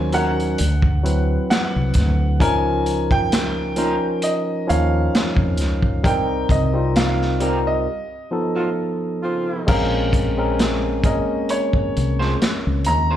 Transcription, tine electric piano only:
0.00 0.13 F#3 medium
0.00 0.13 C#4 medium
0.00 0.14 D#4 medium
0.00 0.15 A#4 loud
0.00 0.60 C5 medium
0.13 0.58 F#3 medium
0.13 0.59 C#4 medium
0.13 0.59 D#4 medium
0.13 0.59 A#4 medium
1.03 2.08 F#3 medium
1.03 2.08 C4 medium
1.03 2.09 E4 medium
1.03 2.09 B4 medium
2.40 3.44 F3 medium
2.40 3.45 C#4 medium
2.40 3.45 D#4 medium
2.40 3.45 A#4 loud
3.76 4.47 F3 medium
3.76 4.47 C#4 medium
3.76 4.48 D#4 medium
3.76 4.48 A#4 medium
4.67 5.72 F3 medium
4.67 5.72 C#4 medium
4.67 5.72 D#4 medium
4.67 5.73 C#5 medium
6.03 6.56 G3 medium
6.03 6.56 C4 medium
6.03 6.56 D#4 medium
6.03 6.57 A#4 medium
6.73 7.25 G3 medium
6.73 7.25 C4 medium
6.73 7.25 D#4 medium
6.73 7.26 F4 medium
7.40 7.86 G3 medium
7.40 7.86 C4 medium
7.40 7.86 D#4 medium
7.40 7.87 A#4 medium
8.31 9.35 F3 medium
8.31 9.36 B3 medium
8.31 9.36 D#4 medium
8.31 9.36 A4 medium
9.67 10.19 G#3 medium
9.67 10.20 C4 medium
9.67 10.20 C#4 medium
9.67 10.20 A#4 loud
10.37 10.89 G#3 medium
10.37 10.89 C4 medium
10.37 10.89 C#4 medium
10.37 10.90 A#4 medium
11.04 12.42 G#3 medium
11.04 12.42 A#3 medium
11.04 12.42 C#4 medium
11.04 12.43 A#4 medium

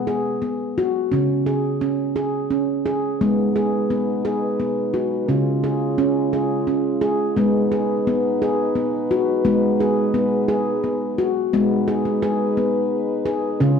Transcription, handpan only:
0.00 0.38 G#3 medium
0.07 0.42 G#4 medium
0.42 0.77 B3 medium
0.78 1.12 F#4 medium
1.12 2.48 C#3 medium
1.12 1.47 C#4 medium
1.46 1.82 G#4 medium
1.81 2.16 C#4 medium
2.16 2.51 G#4 medium
2.50 2.86 C#4 medium
2.86 3.21 G#4 medium
3.21 4.56 G#3 medium
3.21 3.56 B3 medium
3.56 3.91 G#4 medium
3.90 4.25 B3 medium
4.25 4.60 G#4 medium
4.60 4.95 B3 medium
4.94 5.29 F#4 medium
5.29 6.64 C#3 medium
5.29 5.64 C#4 medium
5.64 5.99 G#4 medium
5.98 6.33 C#4 medium
6.33 6.68 G#4 medium
6.67 7.02 C#4 medium
7.01 7.37 G#4 medium
7.36 8.72 G#3 medium
7.36 7.72 B3 medium
7.72 8.07 G#4 medium
8.07 8.42 B3 medium
8.42 8.76 G#4 medium
8.76 9.11 B3 medium
9.11 9.46 F#4 medium
9.45 10.80 G#3 medium
9.45 9.80 B3 medium
9.80 10.15 G#4 medium
10.14 10.49 B3 medium
10.48 10.84 G#4 medium
10.84 11.19 B3 medium
11.18 11.53 F#4 medium
11.53 12.88 G#3 medium
11.53 11.88 B3 medium
11.88 12.06 G#4 medium
12.05 12.22 B3 medium
12.22 12.57 G#4 medium
12.57 12.92 B3 medium
13.26 13.61 G#4 medium
13.60 13.80 C#3 medium
13.60 13.80 C#4 medium

